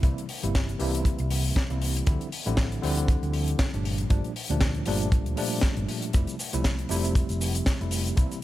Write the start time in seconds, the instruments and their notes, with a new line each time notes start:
0.03 fingered electric bass C2, tine electric piano C3 E3 G3 A#3 E4, kick, closed hi-hat
0.18 closed hi-hat
0.29 open hi-hat
0.43 fingered electric bass G1, tine electric piano C3 E3 G3 A#3 E4, closed hi-hat
0.55 kick, snare, closed hi-hat
0.69 closed hi-hat
0.79 fingered electric bass C2, tine electric piano C3 E3 G3 A#3 E4, open hi-hat
0.95 closed hi-hat
1.05 kick, closed hi-hat
1.19 fingered electric bass C2, closed hi-hat
1.30 open hi-hat
1.44 open hi-hat
1.56 kick, snare
1.70 fingered electric bass C2, tine electric piano C3 E3 G3 A#3 E4, closed hi-hat
1.82 open hi-hat
1.96 closed hi-hat
2.06 fingered electric bass D2, tine electric piano D3 F3 G3 C4 E4, kick, closed hi-hat
2.21 closed hi-hat
2.32 open hi-hat
2.46 fingered electric bass A1, tine electric piano D3 F3 G3 C4 E4, closed hi-hat
2.57 kick, snare, closed hi-hat
2.72 closed hi-hat
2.82 fingered electric bass D2, tine electric piano D3 F3 G3 C4 E4, open hi-hat
2.97 closed hi-hat
3.08 kick, closed hi-hat
3.23 fingered electric bass D2, closed hi-hat
3.33 open hi-hat
3.48 closed hi-hat
3.59 kick, snare, closed hi-hat
3.73 fingered electric bass G1, tine electric piano A#2 F3 G3 A3 D4, closed hi-hat
3.85 open hi-hat
3.98 closed hi-hat
4.10 fingered electric bass G1, tine electric piano A#2 F3 G3 A3 D4, kick, closed hi-hat
4.24 closed hi-hat
4.36 open hi-hat
4.50 fingered electric bass D2, tine electric piano A#2 F3 G3 A3 D4, closed hi-hat
4.61 kick, snare, closed hi-hat
4.74 closed hi-hat
4.86 fingered electric bass G1, tine electric piano A#2 F3 G3 A3 D4, open hi-hat
5.01 closed hi-hat
5.12 kick, closed hi-hat
5.26 fingered electric bass D2, closed hi-hat
5.36 tine electric piano A#2 F3 G3 A3 D4, open hi-hat
5.51 open hi-hat
5.61 kick, snare, closed hi-hat
5.77 fingered electric bass G1, closed hi-hat
5.89 open hi-hat
6.02 closed hi-hat
6.13 fingered electric bass F1, tine electric piano C3 F3 G3 A3 E4, kick, closed hi-hat, cabasa
6.27 closed hi-hat, cabasa
6.39 open hi-hat, cabasa
6.53 fingered electric bass C2, tine electric piano C3 F3 G3 A3 E4, closed hi-hat, cabasa
6.64 kick, snare, closed hi-hat, cabasa
6.79 closed hi-hat
6.89 fingered electric bass F1, tine electric piano C3 F3 G3 A3 E4, open hi-hat, cabasa
7.04 closed hi-hat, cabasa
7.15 kick, closed hi-hat, cabasa
7.29 fingered electric bass F1, closed hi-hat, cabasa
7.41 open hi-hat, cabasa
7.55 closed hi-hat, cabasa
7.66 kick, snare, closed hi-hat, cabasa
7.80 fingered electric bass F1, tine electric piano C3 F3 G3 A3 E4, closed hi-hat
7.91 open hi-hat, cabasa
8.06 closed hi-hat, cabasa
8.17 fingered electric bass C2, tine electric piano C3 E3 G3 A#3 E4, kick, closed hi-hat, cabasa
8.31 closed hi-hat, cabasa